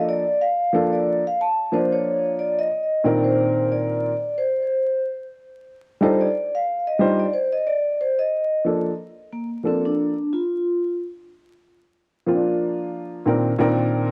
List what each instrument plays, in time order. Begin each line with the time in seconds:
Already playing: upright piano F3 A#3 D4 A4
0.09 vibraphone D5
0.41 vibraphone F5
0.73 upright piano F3 A#3 D4 A4
0.93 vibraphone D5
1.27 vibraphone F5
1.41 vibraphone A5
1.72 upright piano F3 A#3 D4 F4, vibraphone C5
1.92 vibraphone C#5
2.39 vibraphone D5
2.59 vibraphone D#5
3.04 upright piano A#2 D#3 C4 D4 A#4, vibraphone D5
3.24 vibraphone C5
3.72 vibraphone D5
4.38 vibraphone C5
6.01 upright piano G3 D4 D#4 F4 A4, vibraphone C5
6.21 vibraphone D5
6.55 vibraphone F5
6.87 vibraphone D#5
6.99 upright piano G3 D4 D#4 F4 C5
7.20 vibraphone D5
7.34 vibraphone C5
7.53 vibraphone D#5
7.67 vibraphone D5
8.01 vibraphone C5
8.19 vibraphone D#5
8.65 upright piano F3 A#3 D4 A4
9.32 vibraphone A#3
9.63 upright piano F3 A#3 D4 A4, vibraphone C4
9.85 vibraphone D4
10.33 vibraphone F4
12.27 upright piano F3 A#3 C4 F4
12.34 upright piano D4
13.26 upright piano A#2 D#3 C4 D4 A#4
13.59 upright piano A#2 D#3 C4 D4 A#4